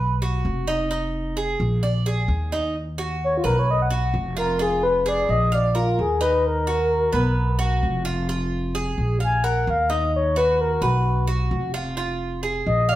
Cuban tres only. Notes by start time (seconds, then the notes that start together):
Already playing: B4
0.22 F#4
0.68 D#4
0.91 D#4
1.37 G#4
1.83 D5
2.06 G#4
2.52 D#4
2.98 F#4
3.44 B4
3.90 F#4
4.37 F4
4.59 F4
5.06 G#4
5.52 F5
5.75 A#4
6.21 D#4
6.67 F#4
7.13 B3
7.59 F#4
8.05 F4
8.29 F4
8.75 G#4
9.20 F5
9.44 A#4
9.90 D#4
10.36 F#4
10.82 B4
11.27 F#4
11.74 F4
11.97 F4
12.43 G#4
12.89 F5